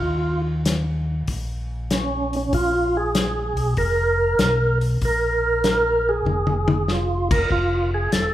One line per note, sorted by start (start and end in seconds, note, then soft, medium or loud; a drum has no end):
0.00 1.24 D#2 medium
0.00 0.42 F4 medium
0.66 snare medium
0.66 closed hi-hat medium
1.28 2.49 A#1 medium
1.28 kick soft
1.28 open hi-hat soft
1.91 2.35 C#4 medium
1.91 snare medium
1.91 closed hi-hat soft
2.33 2.53 C#4 medium
2.33 open hi-hat soft
2.53 3.54 A#1 medium
2.53 2.97 F4 medium
2.53 kick soft
2.53 open hi-hat soft
2.97 3.74 G#4 medium
3.15 snare medium
3.15 closed hi-hat medium
3.57 3.75 B1 medium
3.57 open hi-hat soft
3.77 4.35 F1 medium
3.77 4.78 A#4 medium
3.77 kick soft
3.77 open hi-hat soft
4.39 4.97 B1 medium
4.39 snare medium
4.39 closed hi-hat medium
4.81 open hi-hat soft
5.01 6.22 A#1 medium
5.01 6.11 A#4 loud
5.01 kick soft
5.01 open hi-hat soft
5.64 snare medium
5.64 closed hi-hat soft
6.09 6.92 G#4 loud
6.25 7.46 F1 medium
6.25 high tom soft
6.47 high tom medium
6.68 high tom medium
6.88 7.29 F4 medium
6.88 snare soft
7.31 7.50 A#4 medium
7.31 kick medium
7.31 crash medium
7.50 8.09 F1 medium
7.50 7.91 F4 medium
7.50 kick soft
7.94 8.12 G#4 medium
8.12 8.34 E1 medium
8.12 8.34 A4 medium
8.12 snare medium
8.12 closed hi-hat medium